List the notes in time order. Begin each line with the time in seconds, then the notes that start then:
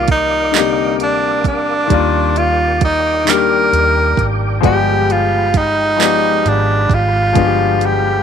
Already playing: C2 D#3 G3 A#3 F4 A#4 D5 F5 D6
0.08 D#4, kick, closed hi-hat
0.52 D3 G3 A#3, clap, closed hi-hat
0.56 C3 G4 D5
1.00 D2 D4, closed hi-hat
1.44 E2 D4, kick, closed hi-hat
1.87 D#2 D#3 G3 A#3 A#4 G5, kick, closed hi-hat
1.92 F4 D5
2.36 F4, closed hi-hat
2.81 D#4, kick, closed hi-hat
3.25 D#3 G3 A#3, clap, closed hi-hat
3.29 D4 G4 A#4
3.73 D#2, closed hi-hat
4.17 G#1, kick, closed hi-hat
4.61 G1 F3 G#3 B3 F5 B5, kick, closed hi-hat
4.65 F#4 G4 D5
4.73 G4
5.10 F4, closed hi-hat
5.54 D#4, kick, closed hi-hat
5.97 F3 G#3 B3
6.01 G4 D5, clap, closed hi-hat
6.46 G#1 D4, closed hi-hat
6.89 G#1, kick, closed hi-hat
6.94 F4
7.33 G1 F3 G#3 B3 D4, kick, closed hi-hat
7.39 F#4
7.45 G4
7.81 closed hi-hat
7.86 G4